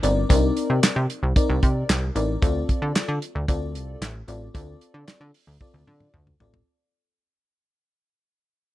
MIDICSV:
0, 0, Header, 1, 4, 480
1, 0, Start_track
1, 0, Tempo, 530973
1, 270, Time_signature, 4, 2, 24, 8
1, 7905, End_track
2, 0, Start_track
2, 0, Title_t, "FM electric piano"
2, 0, Program_c, 0, 5
2, 25, Note_on_c, 0, 60, 83
2, 28, Note_on_c, 0, 63, 69
2, 30, Note_on_c, 0, 70, 79
2, 34, Note_on_c, 0, 74, 95
2, 179, Note_off_c, 0, 60, 0
2, 180, Note_off_c, 0, 63, 0
2, 182, Note_off_c, 0, 70, 0
2, 183, Note_off_c, 0, 74, 0
2, 264, Note_on_c, 0, 60, 93
2, 266, Note_on_c, 0, 62, 70
2, 269, Note_on_c, 0, 70, 88
2, 272, Note_on_c, 0, 74, 100
2, 325, Note_on_c, 0, 63, 83
2, 326, Note_off_c, 0, 62, 0
2, 873, Note_off_c, 0, 60, 0
2, 876, Note_off_c, 0, 70, 0
2, 877, Note_off_c, 0, 74, 0
2, 903, Note_off_c, 0, 63, 0
2, 1228, Note_on_c, 0, 60, 88
2, 1230, Note_on_c, 0, 63, 83
2, 1232, Note_on_c, 0, 70, 80
2, 1235, Note_on_c, 0, 74, 87
2, 1684, Note_off_c, 0, 60, 0
2, 1684, Note_off_c, 0, 63, 0
2, 1686, Note_off_c, 0, 70, 0
2, 1687, Note_off_c, 0, 74, 0
2, 1947, Note_on_c, 0, 60, 73
2, 1949, Note_on_c, 0, 63, 75
2, 1951, Note_on_c, 0, 70, 73
2, 1954, Note_on_c, 0, 74, 88
2, 2100, Note_off_c, 0, 60, 0
2, 2101, Note_off_c, 0, 63, 0
2, 2102, Note_off_c, 0, 70, 0
2, 2104, Note_off_c, 0, 74, 0
2, 2185, Note_on_c, 0, 60, 93
2, 2188, Note_on_c, 0, 65, 83
2, 2192, Note_on_c, 0, 69, 79
2, 2192, Note_on_c, 0, 74, 96
2, 2794, Note_off_c, 0, 60, 0
2, 2795, Note_off_c, 0, 65, 0
2, 2797, Note_off_c, 0, 69, 0
2, 2797, Note_off_c, 0, 74, 0
2, 3148, Note_on_c, 0, 60, 85
2, 3149, Note_on_c, 0, 65, 78
2, 3152, Note_on_c, 0, 69, 86
2, 3155, Note_on_c, 0, 74, 95
2, 3604, Note_off_c, 0, 60, 0
2, 3604, Note_off_c, 0, 65, 0
2, 3606, Note_off_c, 0, 69, 0
2, 3607, Note_off_c, 0, 74, 0
2, 3866, Note_on_c, 0, 60, 73
2, 3868, Note_on_c, 0, 65, 73
2, 3870, Note_on_c, 0, 69, 67
2, 3873, Note_on_c, 0, 74, 89
2, 4019, Note_off_c, 0, 60, 0
2, 4020, Note_off_c, 0, 65, 0
2, 4022, Note_off_c, 0, 69, 0
2, 4023, Note_off_c, 0, 74, 0
2, 4106, Note_on_c, 0, 60, 89
2, 4108, Note_on_c, 0, 65, 87
2, 4111, Note_on_c, 0, 69, 85
2, 4114, Note_on_c, 0, 74, 104
2, 4714, Note_off_c, 0, 60, 0
2, 4715, Note_off_c, 0, 65, 0
2, 4717, Note_off_c, 0, 69, 0
2, 4718, Note_off_c, 0, 74, 0
2, 5069, Note_on_c, 0, 60, 81
2, 5071, Note_on_c, 0, 65, 78
2, 5075, Note_on_c, 0, 69, 76
2, 5077, Note_on_c, 0, 74, 99
2, 5524, Note_off_c, 0, 60, 0
2, 5525, Note_off_c, 0, 65, 0
2, 5527, Note_off_c, 0, 69, 0
2, 5528, Note_off_c, 0, 74, 0
2, 5787, Note_on_c, 0, 60, 75
2, 5790, Note_on_c, 0, 65, 64
2, 5792, Note_on_c, 0, 69, 75
2, 5795, Note_on_c, 0, 74, 84
2, 5940, Note_off_c, 0, 60, 0
2, 5941, Note_off_c, 0, 65, 0
2, 5943, Note_off_c, 0, 69, 0
2, 5944, Note_off_c, 0, 74, 0
2, 7905, End_track
3, 0, Start_track
3, 0, Title_t, "Analog synth bass"
3, 0, Program_c, 1, 38
3, 31, Note_on_c, 1, 31, 99
3, 221, Note_off_c, 1, 31, 0
3, 271, Note_on_c, 1, 36, 106
3, 461, Note_off_c, 1, 36, 0
3, 631, Note_on_c, 1, 48, 87
3, 726, Note_off_c, 1, 48, 0
3, 750, Note_on_c, 1, 48, 45
3, 798, Note_off_c, 1, 48, 0
3, 869, Note_on_c, 1, 48, 101
3, 964, Note_off_c, 1, 48, 0
3, 1110, Note_on_c, 1, 36, 91
3, 1205, Note_off_c, 1, 36, 0
3, 1351, Note_on_c, 1, 36, 111
3, 1446, Note_off_c, 1, 36, 0
3, 1472, Note_on_c, 1, 48, 93
3, 1662, Note_off_c, 1, 48, 0
3, 1710, Note_on_c, 1, 36, 101
3, 1901, Note_off_c, 1, 36, 0
3, 1948, Note_on_c, 1, 33, 93
3, 2139, Note_off_c, 1, 33, 0
3, 2191, Note_on_c, 1, 38, 114
3, 2381, Note_off_c, 1, 38, 0
3, 2549, Note_on_c, 1, 50, 100
3, 2645, Note_off_c, 1, 50, 0
3, 2668, Note_on_c, 1, 50, 44
3, 2717, Note_off_c, 1, 50, 0
3, 2788, Note_on_c, 1, 50, 116
3, 2884, Note_off_c, 1, 50, 0
3, 3031, Note_on_c, 1, 38, 97
3, 3126, Note_off_c, 1, 38, 0
3, 3150, Note_on_c, 1, 38, 98
3, 3390, Note_on_c, 1, 36, 89
3, 3403, Note_off_c, 1, 38, 0
3, 3580, Note_off_c, 1, 36, 0
3, 3630, Note_on_c, 1, 33, 113
3, 3821, Note_off_c, 1, 33, 0
3, 3869, Note_on_c, 1, 33, 94
3, 4060, Note_off_c, 1, 33, 0
3, 4110, Note_on_c, 1, 38, 114
3, 4301, Note_off_c, 1, 38, 0
3, 4467, Note_on_c, 1, 50, 101
3, 4564, Note_off_c, 1, 50, 0
3, 4706, Note_on_c, 1, 50, 108
3, 4803, Note_off_c, 1, 50, 0
3, 4948, Note_on_c, 1, 38, 84
3, 5044, Note_off_c, 1, 38, 0
3, 5188, Note_on_c, 1, 38, 87
3, 5284, Note_off_c, 1, 38, 0
3, 5310, Note_on_c, 1, 50, 110
3, 5501, Note_off_c, 1, 50, 0
3, 5547, Note_on_c, 1, 38, 100
3, 5739, Note_off_c, 1, 38, 0
3, 5787, Note_on_c, 1, 33, 91
3, 5979, Note_off_c, 1, 33, 0
3, 7905, End_track
4, 0, Start_track
4, 0, Title_t, "Drums"
4, 30, Note_on_c, 9, 42, 80
4, 120, Note_off_c, 9, 42, 0
4, 272, Note_on_c, 9, 36, 122
4, 272, Note_on_c, 9, 42, 104
4, 362, Note_off_c, 9, 36, 0
4, 362, Note_off_c, 9, 42, 0
4, 512, Note_on_c, 9, 42, 65
4, 602, Note_off_c, 9, 42, 0
4, 750, Note_on_c, 9, 42, 87
4, 755, Note_on_c, 9, 38, 109
4, 758, Note_on_c, 9, 39, 97
4, 840, Note_off_c, 9, 42, 0
4, 845, Note_off_c, 9, 38, 0
4, 848, Note_off_c, 9, 39, 0
4, 992, Note_on_c, 9, 42, 75
4, 1083, Note_off_c, 9, 42, 0
4, 1230, Note_on_c, 9, 36, 116
4, 1231, Note_on_c, 9, 42, 91
4, 1321, Note_off_c, 9, 36, 0
4, 1322, Note_off_c, 9, 42, 0
4, 1471, Note_on_c, 9, 42, 77
4, 1472, Note_on_c, 9, 36, 93
4, 1561, Note_off_c, 9, 42, 0
4, 1562, Note_off_c, 9, 36, 0
4, 1713, Note_on_c, 9, 42, 84
4, 1715, Note_on_c, 9, 38, 113
4, 1718, Note_on_c, 9, 39, 101
4, 1803, Note_off_c, 9, 42, 0
4, 1805, Note_off_c, 9, 38, 0
4, 1808, Note_off_c, 9, 39, 0
4, 1951, Note_on_c, 9, 42, 66
4, 2041, Note_off_c, 9, 42, 0
4, 2192, Note_on_c, 9, 36, 127
4, 2193, Note_on_c, 9, 42, 103
4, 2282, Note_off_c, 9, 36, 0
4, 2283, Note_off_c, 9, 42, 0
4, 2432, Note_on_c, 9, 36, 94
4, 2433, Note_on_c, 9, 42, 76
4, 2523, Note_off_c, 9, 36, 0
4, 2523, Note_off_c, 9, 42, 0
4, 2670, Note_on_c, 9, 42, 90
4, 2675, Note_on_c, 9, 38, 111
4, 2678, Note_on_c, 9, 39, 87
4, 2760, Note_off_c, 9, 42, 0
4, 2765, Note_off_c, 9, 38, 0
4, 2768, Note_off_c, 9, 39, 0
4, 2913, Note_on_c, 9, 42, 81
4, 3003, Note_off_c, 9, 42, 0
4, 3150, Note_on_c, 9, 36, 119
4, 3151, Note_on_c, 9, 42, 94
4, 3240, Note_off_c, 9, 36, 0
4, 3241, Note_off_c, 9, 42, 0
4, 3392, Note_on_c, 9, 42, 72
4, 3482, Note_off_c, 9, 42, 0
4, 3633, Note_on_c, 9, 42, 100
4, 3635, Note_on_c, 9, 38, 108
4, 3638, Note_on_c, 9, 39, 94
4, 3724, Note_off_c, 9, 42, 0
4, 3725, Note_off_c, 9, 38, 0
4, 3729, Note_off_c, 9, 39, 0
4, 3869, Note_on_c, 9, 42, 68
4, 3960, Note_off_c, 9, 42, 0
4, 4111, Note_on_c, 9, 36, 127
4, 4112, Note_on_c, 9, 42, 102
4, 4201, Note_off_c, 9, 36, 0
4, 4202, Note_off_c, 9, 42, 0
4, 4351, Note_on_c, 9, 42, 72
4, 4441, Note_off_c, 9, 42, 0
4, 4588, Note_on_c, 9, 42, 82
4, 4593, Note_on_c, 9, 38, 110
4, 4596, Note_on_c, 9, 39, 90
4, 4678, Note_off_c, 9, 42, 0
4, 4683, Note_off_c, 9, 38, 0
4, 4686, Note_off_c, 9, 39, 0
4, 4830, Note_on_c, 9, 46, 82
4, 4921, Note_off_c, 9, 46, 0
4, 5069, Note_on_c, 9, 36, 115
4, 5070, Note_on_c, 9, 48, 60
4, 5159, Note_off_c, 9, 36, 0
4, 5161, Note_off_c, 9, 48, 0
4, 5191, Note_on_c, 9, 48, 55
4, 5281, Note_off_c, 9, 48, 0
4, 5310, Note_on_c, 9, 47, 72
4, 5400, Note_off_c, 9, 47, 0
4, 5428, Note_on_c, 9, 47, 73
4, 5518, Note_off_c, 9, 47, 0
4, 5549, Note_on_c, 9, 45, 85
4, 5639, Note_off_c, 9, 45, 0
4, 5668, Note_on_c, 9, 45, 75
4, 5759, Note_off_c, 9, 45, 0
4, 5789, Note_on_c, 9, 43, 97
4, 5879, Note_off_c, 9, 43, 0
4, 5910, Note_on_c, 9, 43, 106
4, 6000, Note_off_c, 9, 43, 0
4, 7905, End_track
0, 0, End_of_file